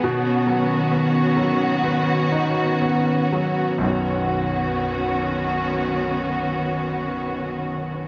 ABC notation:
X:1
M:4/4
L:1/8
Q:1/4=56
K:B
V:1 name="String section"
[D,B,CF]8 | [D,B,CF]8 |]
V:2 name="Grand piano" clef=bass
B,, F, B, F, B, D B, F, | [B,,,F,,D,B,Fc]8 |]